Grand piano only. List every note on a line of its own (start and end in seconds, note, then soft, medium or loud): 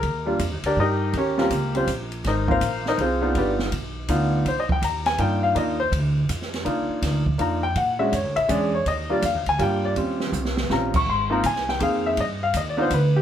0.00 0.26 A#4 medium
0.26 0.38 G3 medium
0.26 0.38 A#3 medium
0.26 0.39 D4 medium
0.26 0.39 F4 medium
0.66 0.78 D4 medium
0.66 0.78 G4 medium
0.66 0.78 A#4 medium
0.66 0.77 D5 medium
0.80 1.13 D#4 medium
0.80 1.13 G4 medium
0.80 1.13 A#4 medium
0.80 1.13 D#5 medium
1.17 1.37 C#4 medium
1.17 1.39 G4 medium
1.17 1.39 A#4 medium
1.17 1.39 C#5 medium
1.38 1.49 G3 medium
1.38 1.49 C4 medium
1.38 1.49 C#4 medium
1.38 1.50 F4 medium
1.38 1.74 G4 medium
1.38 1.74 A#4 medium
1.42 1.74 A#3 medium
1.74 1.86 G3 medium
1.74 1.86 C4 soft
1.74 1.86 C#4 medium
1.74 1.88 F4 medium
1.74 1.87 G4 medium
1.74 1.88 C5 medium
2.27 2.47 D#4 medium
2.27 2.49 A#4 medium
2.27 2.49 C5 medium
2.27 2.49 D#5 medium
2.48 2.59 A#3 medium
2.48 2.59 C4 medium
2.48 2.60 D#4 medium
2.48 2.60 F4 medium
2.48 2.84 A#4 medium
2.48 2.84 C5 medium
2.48 2.84 F5 loud
2.88 2.99 D#4 medium
2.88 2.99 A#4 medium
2.88 2.99 C5 medium
2.88 2.99 D#5 medium
3.01 3.34 C4 medium
3.01 3.21 F4 medium
3.01 3.34 G#4 medium
3.01 3.34 C5 medium
3.21 3.69 B3 medium
3.21 3.36 D4 medium
3.21 3.69 D#4 medium
3.21 3.69 F4 medium
3.37 3.51 D4 medium
3.37 3.51 G4 medium
3.37 3.51 B4 medium
3.37 3.51 D5 medium
4.09 4.45 B3 medium
4.09 4.46 D4 medium
4.09 4.46 D#4 medium
4.09 4.46 F4 medium
4.48 4.58 C5 medium
4.60 4.70 D#5 medium
4.72 4.83 G5 medium
4.84 5.06 A#5 medium
5.06 5.18 G#5 loud
5.19 5.53 A#3 medium
5.19 5.54 D4 medium
5.19 5.54 D#4 medium
5.19 5.54 F4 medium
5.19 5.43 G5 medium
5.43 5.55 F5 medium
5.55 5.77 A#3 medium
5.55 5.77 D4 medium
5.55 5.77 D#4 medium
5.55 5.77 F4 medium
5.55 5.79 D#5 medium
5.80 5.87 C5 loud
6.65 7.21 A#3 medium
6.65 7.21 D4 medium
6.65 7.21 D#4 medium
6.65 7.21 F4 medium
7.38 7.60 A#3 medium
7.38 7.60 D4 soft
7.38 7.61 D#4 soft
7.38 7.61 F4 medium
7.38 7.63 A#5 medium
7.63 7.76 G5 loud
7.77 8.00 F#5 medium
7.99 8.11 G#3 medium
7.99 8.11 C#4 medium
7.99 8.11 D4 medium
7.99 8.12 F#4 medium
7.99 8.12 E5 medium
8.14 8.37 C#5 medium
8.36 8.49 E5 loud
8.49 8.71 G#3 medium
8.49 8.71 C#4 medium
8.49 8.71 D4 medium
8.49 8.71 G#4 medium
8.49 8.73 D5 medium
8.74 8.86 C#5 medium
8.88 9.10 D#5 loud
9.09 9.21 G3 medium
9.09 9.22 A#3 medium
9.09 9.22 D4 medium
9.09 9.22 F4 medium
9.09 9.24 D5 medium
9.25 9.47 F5 medium
9.49 9.60 G#5 loud
9.58 9.95 G3 medium
9.58 9.96 A#3 medium
9.58 9.96 D4 medium
9.58 9.96 F4 medium
9.62 9.84 G5 medium
9.85 9.92 D5 loud
9.96 10.52 G3 medium
9.96 10.53 C4 soft
9.96 10.53 C#4 soft
9.96 10.53 F4 medium
10.70 10.91 G3 medium
10.70 10.92 C4 medium
10.70 10.92 C#4 medium
10.70 10.92 F4 medium
10.70 10.95 A#5 medium
10.96 11.08 C#6 loud
11.09 11.32 C6 medium
11.30 11.42 A#3 medium
11.30 11.42 C4 medium
11.30 11.42 D#4 medium
11.30 11.42 F4 medium
11.30 11.44 A#5 medium
11.46 11.68 G#5 medium
11.69 11.81 G5 medium
11.80 12.17 A#3 medium
11.80 12.17 C4 medium
11.80 12.17 D#4 medium
11.80 12.18 G#4 medium
11.80 12.05 F5 medium
12.06 12.18 E5 medium
12.20 12.42 D#5 medium
12.43 12.55 F5 loud
12.57 12.68 D#5 medium
12.70 12.80 D5 medium
12.77 12.89 B3 medium
12.77 12.90 D4 medium
12.77 12.90 D#4 medium
12.77 12.90 F4 medium
12.82 12.92 C5 medium
12.94 13.16 B4 medium
13.16 13.22 G4 medium